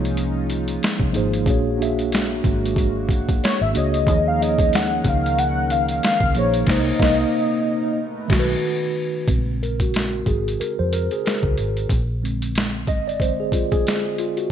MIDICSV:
0, 0, Header, 1, 7, 480
1, 0, Start_track
1, 0, Key_signature, -5, "minor"
1, 0, Tempo, 652174
1, 1075, Time_signature, 4, 2, 24, 8
1, 10686, End_track
2, 0, Start_track
2, 0, Title_t, "Soft synth lead"
2, 0, Program_c, 0, 80
2, 2529, Note_on_c, 0, 73, 93
2, 2661, Note_on_c, 0, 76, 89
2, 2672, Note_off_c, 0, 73, 0
2, 2772, Note_on_c, 0, 75, 101
2, 2783, Note_off_c, 0, 76, 0
2, 3148, Note_on_c, 0, 77, 112
2, 3159, Note_off_c, 0, 75, 0
2, 3253, Note_on_c, 0, 75, 100
2, 3264, Note_off_c, 0, 77, 0
2, 3498, Note_on_c, 0, 78, 101
2, 3509, Note_off_c, 0, 75, 0
2, 3744, Note_on_c, 0, 77, 101
2, 3755, Note_off_c, 0, 78, 0
2, 3965, Note_on_c, 0, 78, 119
2, 3976, Note_off_c, 0, 77, 0
2, 4207, Note_on_c, 0, 77, 103
2, 4218, Note_off_c, 0, 78, 0
2, 4441, Note_off_c, 0, 77, 0
2, 4454, Note_on_c, 0, 77, 105
2, 4691, Note_on_c, 0, 73, 91
2, 4703, Note_off_c, 0, 77, 0
2, 4926, Note_on_c, 0, 75, 104
2, 4938, Note_off_c, 0, 73, 0
2, 6361, Note_off_c, 0, 75, 0
2, 10686, End_track
3, 0, Start_track
3, 0, Title_t, "Tine electric piano"
3, 0, Program_c, 1, 4
3, 0, Control_c, 1, 64, 127
3, 0, Note_on_c, 1, 53, 73
3, 0, Note_on_c, 1, 58, 66
3, 0, Note_on_c, 1, 63, 71
3, 0, Note_on_c, 1, 68, 64
3, 0, Note_on_c, 1, 73, 72
3, 167, Note_off_c, 1, 53, 0
3, 172, Note_off_c, 1, 58, 0
3, 177, Note_off_c, 1, 63, 0
3, 181, Note_off_c, 1, 68, 0
3, 186, Note_off_c, 1, 73, 0
3, 823, Note_on_c, 1, 53, 83
3, 831, Note_on_c, 1, 58, 73
3, 839, Note_on_c, 1, 63, 81
3, 850, Note_on_c, 1, 68, 76
3, 859, Note_on_c, 1, 72, 89
3, 1029, Note_off_c, 1, 53, 0
3, 1033, Note_off_c, 1, 58, 0
3, 1037, Note_off_c, 1, 63, 0
3, 1043, Note_off_c, 1, 68, 0
3, 1047, Note_off_c, 1, 72, 0
3, 1069, Note_on_c, 1, 58, 80
3, 1077, Note_on_c, 1, 62, 84
3, 1084, Control_c, 1, 64, 0
3, 1087, Note_on_c, 1, 66, 69
3, 1095, Note_on_c, 1, 68, 83
3, 1107, Note_on_c, 1, 73, 88
3, 1197, Control_c, 1, 64, 127
3, 1272, Note_off_c, 1, 58, 0
3, 1276, Note_off_c, 1, 62, 0
3, 1281, Note_off_c, 1, 66, 0
3, 1285, Note_off_c, 1, 68, 0
3, 1291, Note_off_c, 1, 73, 0
3, 1307, Note_on_c, 1, 58, 70
3, 1315, Note_on_c, 1, 62, 71
3, 1325, Note_on_c, 1, 66, 66
3, 1334, Note_on_c, 1, 68, 70
3, 1343, Note_on_c, 1, 76, 86
3, 2087, Note_off_c, 1, 58, 0
3, 2091, Note_off_c, 1, 62, 0
3, 2096, Note_off_c, 1, 66, 0
3, 2101, Note_off_c, 1, 68, 0
3, 2105, Note_off_c, 1, 76, 0
3, 2747, Note_on_c, 1, 58, 72
3, 2757, Note_on_c, 1, 62, 67
3, 2764, Note_on_c, 1, 66, 70
3, 2773, Note_on_c, 1, 68, 65
3, 2782, Note_on_c, 1, 73, 85
3, 2951, Note_off_c, 1, 58, 0
3, 2956, Note_off_c, 1, 62, 0
3, 2959, Note_off_c, 1, 66, 0
3, 2964, Note_off_c, 1, 68, 0
3, 2968, Note_off_c, 1, 73, 0
3, 2990, Note_on_c, 1, 53, 62
3, 2999, Note_on_c, 1, 58, 66
3, 3005, Control_c, 1, 64, 0
3, 3008, Note_on_c, 1, 63, 60
3, 3016, Note_on_c, 1, 68, 64
3, 3026, Note_on_c, 1, 73, 73
3, 3155, Control_c, 1, 64, 127
3, 3192, Note_off_c, 1, 53, 0
3, 3197, Note_off_c, 1, 58, 0
3, 3202, Note_off_c, 1, 63, 0
3, 3205, Note_off_c, 1, 68, 0
3, 3210, Note_off_c, 1, 73, 0
3, 3224, Note_on_c, 1, 53, 62
3, 3234, Note_on_c, 1, 58, 65
3, 3241, Note_on_c, 1, 63, 56
3, 3252, Note_on_c, 1, 68, 56
3, 3261, Note_on_c, 1, 73, 74
3, 4006, Note_off_c, 1, 53, 0
3, 4011, Note_off_c, 1, 58, 0
3, 4015, Note_off_c, 1, 63, 0
3, 4020, Note_off_c, 1, 68, 0
3, 4024, Note_off_c, 1, 73, 0
3, 4665, Note_on_c, 1, 53, 69
3, 4672, Note_on_c, 1, 58, 62
3, 4683, Note_on_c, 1, 63, 63
3, 4691, Note_on_c, 1, 68, 60
3, 4702, Note_on_c, 1, 72, 75
3, 4870, Note_off_c, 1, 53, 0
3, 4874, Note_off_c, 1, 58, 0
3, 4879, Note_off_c, 1, 63, 0
3, 4883, Note_off_c, 1, 68, 0
3, 4889, Note_off_c, 1, 72, 0
3, 4911, Note_on_c, 1, 58, 83
3, 4920, Note_on_c, 1, 63, 95
3, 4923, Control_c, 1, 64, 0
3, 4939, Note_on_c, 1, 72, 91
3, 5049, Control_c, 1, 64, 127
3, 5083, Note_off_c, 1, 58, 0
3, 5088, Note_off_c, 1, 63, 0
3, 5099, Note_off_c, 1, 72, 0
3, 5149, Note_on_c, 1, 58, 97
3, 5156, Note_on_c, 1, 63, 93
3, 5173, Note_on_c, 1, 75, 90
3, 5321, Note_off_c, 1, 58, 0
3, 5325, Note_off_c, 1, 63, 0
3, 5336, Note_off_c, 1, 75, 0
3, 5885, Control_c, 1, 64, 0
3, 6013, Control_c, 1, 64, 127
3, 6094, Note_on_c, 1, 51, 100
3, 6121, Note_on_c, 1, 66, 101
3, 6178, Note_on_c, 1, 71, 105
3, 6273, Note_off_c, 1, 51, 0
3, 6289, Note_off_c, 1, 66, 0
3, 6321, Note_off_c, 1, 71, 0
3, 6833, Note_on_c, 1, 49, 49
3, 6837, Note_on_c, 1, 56, 42
3, 6838, Note_on_c, 1, 60, 52
3, 6845, Control_c, 1, 64, 0
3, 6973, Control_c, 1, 64, 127
3, 7086, Note_on_c, 1, 70, 72
3, 7225, Note_off_c, 1, 70, 0
3, 7230, Note_on_c, 1, 66, 70
3, 7539, Note_off_c, 1, 66, 0
3, 7564, Note_on_c, 1, 68, 86
3, 7783, Note_off_c, 1, 68, 0
3, 7805, Note_on_c, 1, 70, 80
3, 7942, Note_on_c, 1, 72, 90
3, 7944, Note_off_c, 1, 70, 0
3, 8041, Note_off_c, 1, 72, 0
3, 8044, Note_on_c, 1, 70, 81
3, 8170, Note_off_c, 1, 70, 0
3, 8187, Note_on_c, 1, 68, 80
3, 8283, Note_off_c, 1, 68, 0
3, 8284, Note_on_c, 1, 70, 79
3, 8724, Note_off_c, 1, 49, 0
3, 8726, Note_off_c, 1, 56, 0
3, 8727, Note_off_c, 1, 60, 0
3, 8730, Note_off_c, 1, 70, 0
3, 8763, Control_c, 1, 64, 0
3, 8898, Control_c, 1, 64, 127
3, 8997, Note_on_c, 1, 50, 45
3, 9001, Note_on_c, 1, 56, 47
3, 9007, Note_on_c, 1, 60, 53
3, 9482, Note_on_c, 1, 75, 109
3, 9623, Note_off_c, 1, 75, 0
3, 9623, Note_on_c, 1, 74, 87
3, 9686, Note_off_c, 1, 50, 0
3, 9689, Note_off_c, 1, 56, 0
3, 9691, Note_off_c, 1, 60, 0
3, 9718, Note_on_c, 1, 56, 41
3, 9719, Note_on_c, 1, 50, 43
3, 9722, Note_off_c, 1, 74, 0
3, 9722, Note_on_c, 1, 72, 86
3, 9725, Note_on_c, 1, 60, 48
3, 9862, Note_on_c, 1, 68, 80
3, 9863, Note_off_c, 1, 72, 0
3, 9933, Note_off_c, 1, 50, 0
3, 9933, Note_off_c, 1, 56, 0
3, 9937, Note_off_c, 1, 60, 0
3, 9958, Note_on_c, 1, 65, 75
3, 9961, Note_off_c, 1, 68, 0
3, 10087, Note_off_c, 1, 65, 0
3, 10098, Note_on_c, 1, 68, 101
3, 10446, Note_on_c, 1, 65, 79
3, 10447, Note_off_c, 1, 68, 0
3, 10571, Note_off_c, 1, 65, 0
3, 10581, Note_on_c, 1, 66, 80
3, 10681, Note_off_c, 1, 66, 0
3, 10683, Control_c, 1, 64, 0
3, 10686, End_track
4, 0, Start_track
4, 0, Title_t, "Analog synth pad"
4, 0, Program_c, 2, 89
4, 0, Note_on_c, 2, 56, 74
4, 0, Note_on_c, 2, 61, 83
4, 0, Note_on_c, 2, 63, 81
4, 0, Note_on_c, 2, 65, 88
4, 1057, Note_off_c, 2, 61, 0
4, 1059, Note_off_c, 2, 56, 0
4, 1059, Note_off_c, 2, 63, 0
4, 1059, Note_off_c, 2, 65, 0
4, 1075, Note_on_c, 2, 66, 92
4, 1078, Note_on_c, 2, 58, 80
4, 1081, Note_on_c, 2, 56, 88
4, 2976, Note_off_c, 2, 66, 0
4, 2977, Note_off_c, 2, 58, 0
4, 2979, Note_off_c, 2, 56, 0
4, 2993, Note_on_c, 2, 51, 86
4, 2996, Note_on_c, 2, 70, 97
4, 2997, Note_on_c, 2, 61, 78
4, 2999, Note_on_c, 2, 63, 76
4, 4895, Note_off_c, 2, 51, 0
4, 4896, Note_off_c, 2, 63, 0
4, 4897, Note_off_c, 2, 61, 0
4, 4903, Note_on_c, 2, 58, 81
4, 4905, Note_on_c, 2, 63, 73
4, 4907, Note_on_c, 2, 48, 77
4, 5847, Note_off_c, 2, 70, 0
4, 5859, Note_off_c, 2, 58, 0
4, 5861, Note_off_c, 2, 48, 0
4, 5865, Note_on_c, 2, 57, 89
4, 5868, Note_on_c, 2, 59, 75
4, 6810, Note_off_c, 2, 63, 0
4, 6820, Note_off_c, 2, 57, 0
4, 6822, Note_off_c, 2, 59, 0
4, 10686, End_track
5, 0, Start_track
5, 0, Title_t, "Fingered electric bass"
5, 0, Program_c, 3, 33
5, 0, Note_on_c, 3, 36, 85
5, 570, Note_off_c, 3, 36, 0
5, 739, Note_on_c, 3, 36, 88
5, 824, Note_off_c, 3, 36, 0
5, 851, Note_on_c, 3, 32, 81
5, 1081, Note_off_c, 3, 32, 0
5, 1081, Note_on_c, 3, 34, 104
5, 1768, Note_off_c, 3, 34, 0
5, 1801, Note_on_c, 3, 32, 80
5, 2488, Note_off_c, 3, 32, 0
5, 2659, Note_on_c, 3, 32, 88
5, 2744, Note_off_c, 3, 32, 0
5, 2765, Note_on_c, 3, 37, 86
5, 3000, Note_off_c, 3, 37, 0
5, 3000, Note_on_c, 3, 39, 109
5, 3688, Note_off_c, 3, 39, 0
5, 3719, Note_on_c, 3, 37, 89
5, 4407, Note_off_c, 3, 37, 0
5, 4574, Note_on_c, 3, 37, 89
5, 4686, Note_off_c, 3, 37, 0
5, 4686, Note_on_c, 3, 34, 85
5, 4909, Note_off_c, 3, 34, 0
5, 4913, Note_on_c, 3, 36, 106
5, 5084, Note_off_c, 3, 36, 0
5, 5156, Note_on_c, 3, 36, 106
5, 5326, Note_off_c, 3, 36, 0
5, 6114, Note_on_c, 3, 35, 92
5, 6284, Note_off_c, 3, 35, 0
5, 6832, Note_on_c, 3, 34, 88
5, 7524, Note_off_c, 3, 34, 0
5, 7558, Note_on_c, 3, 32, 78
5, 7766, Note_off_c, 3, 32, 0
5, 7946, Note_on_c, 3, 41, 82
5, 8150, Note_off_c, 3, 41, 0
5, 8416, Note_on_c, 3, 37, 79
5, 8503, Note_off_c, 3, 37, 0
5, 8527, Note_on_c, 3, 32, 75
5, 8731, Note_off_c, 3, 32, 0
5, 8761, Note_on_c, 3, 34, 96
5, 9481, Note_off_c, 3, 34, 0
5, 9481, Note_on_c, 3, 32, 89
5, 10549, Note_off_c, 3, 32, 0
5, 10686, End_track
6, 0, Start_track
6, 0, Title_t, "Muted fingered electric bass strokes"
6, 7805, Note_on_c, 9, 29, 41
6, 7879, Note_off_c, 9, 29, 0
6, 10686, End_track
7, 0, Start_track
7, 0, Title_t, "Drums"
7, 36, Note_on_c, 9, 42, 44
7, 110, Note_off_c, 9, 42, 0
7, 127, Note_on_c, 9, 42, 91
7, 201, Note_off_c, 9, 42, 0
7, 365, Note_on_c, 9, 42, 72
7, 439, Note_off_c, 9, 42, 0
7, 499, Note_on_c, 9, 42, 49
7, 573, Note_off_c, 9, 42, 0
7, 610, Note_on_c, 9, 42, 64
7, 620, Note_on_c, 9, 38, 96
7, 684, Note_off_c, 9, 42, 0
7, 694, Note_off_c, 9, 38, 0
7, 733, Note_on_c, 9, 36, 104
7, 807, Note_off_c, 9, 36, 0
7, 841, Note_on_c, 9, 42, 54
7, 914, Note_off_c, 9, 42, 0
7, 982, Note_on_c, 9, 42, 50
7, 1056, Note_off_c, 9, 42, 0
7, 1076, Note_on_c, 9, 36, 124
7, 1084, Note_on_c, 9, 42, 84
7, 1149, Note_off_c, 9, 36, 0
7, 1158, Note_off_c, 9, 42, 0
7, 1339, Note_on_c, 9, 42, 55
7, 1413, Note_off_c, 9, 42, 0
7, 1463, Note_on_c, 9, 42, 52
7, 1536, Note_off_c, 9, 42, 0
7, 1563, Note_on_c, 9, 42, 72
7, 1580, Note_on_c, 9, 38, 96
7, 1636, Note_off_c, 9, 42, 0
7, 1653, Note_off_c, 9, 38, 0
7, 1797, Note_on_c, 9, 36, 90
7, 1800, Note_on_c, 9, 42, 54
7, 1870, Note_off_c, 9, 36, 0
7, 1873, Note_off_c, 9, 42, 0
7, 1955, Note_on_c, 9, 42, 47
7, 2028, Note_off_c, 9, 42, 0
7, 2033, Note_on_c, 9, 36, 103
7, 2047, Note_on_c, 9, 42, 89
7, 2107, Note_off_c, 9, 36, 0
7, 2121, Note_off_c, 9, 42, 0
7, 2272, Note_on_c, 9, 36, 94
7, 2284, Note_on_c, 9, 42, 73
7, 2345, Note_off_c, 9, 36, 0
7, 2358, Note_off_c, 9, 42, 0
7, 2419, Note_on_c, 9, 36, 102
7, 2422, Note_on_c, 9, 42, 45
7, 2493, Note_off_c, 9, 36, 0
7, 2495, Note_off_c, 9, 42, 0
7, 2530, Note_on_c, 9, 42, 71
7, 2539, Note_on_c, 9, 38, 96
7, 2603, Note_off_c, 9, 42, 0
7, 2613, Note_off_c, 9, 38, 0
7, 2760, Note_on_c, 9, 42, 61
7, 2833, Note_off_c, 9, 42, 0
7, 2900, Note_on_c, 9, 42, 51
7, 2973, Note_off_c, 9, 42, 0
7, 2994, Note_on_c, 9, 36, 112
7, 3003, Note_on_c, 9, 42, 77
7, 3067, Note_off_c, 9, 36, 0
7, 3076, Note_off_c, 9, 42, 0
7, 3257, Note_on_c, 9, 42, 53
7, 3330, Note_off_c, 9, 42, 0
7, 3375, Note_on_c, 9, 36, 102
7, 3382, Note_on_c, 9, 42, 52
7, 3449, Note_off_c, 9, 36, 0
7, 3455, Note_off_c, 9, 42, 0
7, 3481, Note_on_c, 9, 42, 76
7, 3498, Note_on_c, 9, 38, 99
7, 3554, Note_off_c, 9, 42, 0
7, 3572, Note_off_c, 9, 38, 0
7, 3713, Note_on_c, 9, 36, 96
7, 3713, Note_on_c, 9, 42, 63
7, 3787, Note_off_c, 9, 36, 0
7, 3787, Note_off_c, 9, 42, 0
7, 3872, Note_on_c, 9, 42, 43
7, 3945, Note_off_c, 9, 42, 0
7, 3964, Note_on_c, 9, 42, 92
7, 4037, Note_off_c, 9, 42, 0
7, 4196, Note_on_c, 9, 42, 71
7, 4270, Note_off_c, 9, 42, 0
7, 4332, Note_on_c, 9, 42, 47
7, 4406, Note_off_c, 9, 42, 0
7, 4440, Note_on_c, 9, 42, 72
7, 4450, Note_on_c, 9, 38, 96
7, 4513, Note_off_c, 9, 42, 0
7, 4523, Note_off_c, 9, 38, 0
7, 4567, Note_on_c, 9, 36, 107
7, 4640, Note_off_c, 9, 36, 0
7, 4671, Note_on_c, 9, 42, 59
7, 4744, Note_off_c, 9, 42, 0
7, 4811, Note_on_c, 9, 42, 52
7, 4885, Note_off_c, 9, 42, 0
7, 4906, Note_on_c, 9, 49, 83
7, 4909, Note_on_c, 9, 36, 107
7, 4926, Note_on_c, 9, 38, 108
7, 4979, Note_off_c, 9, 49, 0
7, 4983, Note_off_c, 9, 36, 0
7, 5000, Note_off_c, 9, 38, 0
7, 5149, Note_on_c, 9, 36, 109
7, 5170, Note_on_c, 9, 38, 94
7, 5223, Note_off_c, 9, 36, 0
7, 5243, Note_off_c, 9, 38, 0
7, 6107, Note_on_c, 9, 36, 116
7, 6107, Note_on_c, 9, 49, 91
7, 6128, Note_on_c, 9, 38, 111
7, 6181, Note_off_c, 9, 36, 0
7, 6181, Note_off_c, 9, 49, 0
7, 6201, Note_off_c, 9, 38, 0
7, 6828, Note_on_c, 9, 36, 108
7, 6832, Note_on_c, 9, 42, 76
7, 6901, Note_off_c, 9, 36, 0
7, 6905, Note_off_c, 9, 42, 0
7, 7088, Note_on_c, 9, 42, 45
7, 7162, Note_off_c, 9, 42, 0
7, 7212, Note_on_c, 9, 36, 83
7, 7218, Note_on_c, 9, 42, 52
7, 7285, Note_off_c, 9, 36, 0
7, 7292, Note_off_c, 9, 42, 0
7, 7316, Note_on_c, 9, 42, 64
7, 7333, Note_on_c, 9, 38, 92
7, 7389, Note_off_c, 9, 42, 0
7, 7407, Note_off_c, 9, 38, 0
7, 7553, Note_on_c, 9, 36, 78
7, 7556, Note_on_c, 9, 42, 53
7, 7627, Note_off_c, 9, 36, 0
7, 7630, Note_off_c, 9, 42, 0
7, 7714, Note_on_c, 9, 42, 44
7, 7787, Note_off_c, 9, 42, 0
7, 7808, Note_on_c, 9, 42, 81
7, 7882, Note_off_c, 9, 42, 0
7, 8042, Note_on_c, 9, 42, 69
7, 8116, Note_off_c, 9, 42, 0
7, 8177, Note_on_c, 9, 42, 41
7, 8250, Note_off_c, 9, 42, 0
7, 8287, Note_on_c, 9, 42, 64
7, 8297, Note_on_c, 9, 38, 88
7, 8360, Note_off_c, 9, 42, 0
7, 8370, Note_off_c, 9, 38, 0
7, 8412, Note_on_c, 9, 36, 90
7, 8486, Note_off_c, 9, 36, 0
7, 8519, Note_on_c, 9, 42, 56
7, 8593, Note_off_c, 9, 42, 0
7, 8660, Note_on_c, 9, 42, 48
7, 8734, Note_off_c, 9, 42, 0
7, 8755, Note_on_c, 9, 36, 105
7, 8760, Note_on_c, 9, 42, 70
7, 8828, Note_off_c, 9, 36, 0
7, 8834, Note_off_c, 9, 42, 0
7, 9016, Note_on_c, 9, 42, 46
7, 9090, Note_off_c, 9, 42, 0
7, 9142, Note_on_c, 9, 42, 50
7, 9216, Note_off_c, 9, 42, 0
7, 9240, Note_on_c, 9, 42, 68
7, 9257, Note_on_c, 9, 38, 103
7, 9313, Note_off_c, 9, 42, 0
7, 9331, Note_off_c, 9, 38, 0
7, 9475, Note_on_c, 9, 36, 88
7, 9476, Note_on_c, 9, 42, 48
7, 9549, Note_off_c, 9, 36, 0
7, 9550, Note_off_c, 9, 42, 0
7, 9634, Note_on_c, 9, 42, 39
7, 9708, Note_off_c, 9, 42, 0
7, 9714, Note_on_c, 9, 36, 87
7, 9726, Note_on_c, 9, 42, 84
7, 9787, Note_off_c, 9, 36, 0
7, 9800, Note_off_c, 9, 42, 0
7, 9951, Note_on_c, 9, 36, 85
7, 9959, Note_on_c, 9, 42, 69
7, 10025, Note_off_c, 9, 36, 0
7, 10033, Note_off_c, 9, 42, 0
7, 10096, Note_on_c, 9, 42, 42
7, 10097, Note_on_c, 9, 36, 96
7, 10170, Note_off_c, 9, 42, 0
7, 10171, Note_off_c, 9, 36, 0
7, 10208, Note_on_c, 9, 42, 58
7, 10218, Note_on_c, 9, 38, 94
7, 10281, Note_off_c, 9, 42, 0
7, 10291, Note_off_c, 9, 38, 0
7, 10439, Note_on_c, 9, 42, 54
7, 10513, Note_off_c, 9, 42, 0
7, 10577, Note_on_c, 9, 42, 46
7, 10650, Note_off_c, 9, 42, 0
7, 10686, End_track
0, 0, End_of_file